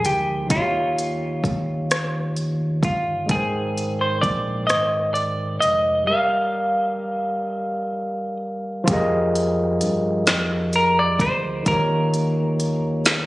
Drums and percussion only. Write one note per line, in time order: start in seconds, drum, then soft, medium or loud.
0.05 closed hi-hat soft
0.50 kick loud
0.50 closed hi-hat medium
0.99 closed hi-hat soft
1.44 kick medium
1.44 closed hi-hat soft
1.91 cross-stick loud
1.91 closed hi-hat medium
2.36 closed hi-hat soft
2.83 kick medium
2.83 closed hi-hat soft
3.29 kick loud
3.29 closed hi-hat medium
3.78 closed hi-hat soft
4.23 kick medium
4.23 closed hi-hat soft
4.70 cross-stick medium
4.70 closed hi-hat medium
5.15 closed hi-hat soft
5.62 closed hi-hat soft
8.88 kick loud
8.88 closed hi-hat medium
9.35 closed hi-hat soft
9.81 closed hi-hat soft
10.27 snare loud
10.27 closed hi-hat medium
10.73 closed hi-hat soft
11.19 kick medium
11.19 closed hi-hat medium
11.66 kick loud
11.66 closed hi-hat medium
12.14 closed hi-hat soft
12.60 closed hi-hat soft
13.06 snare loud
13.06 closed hi-hat medium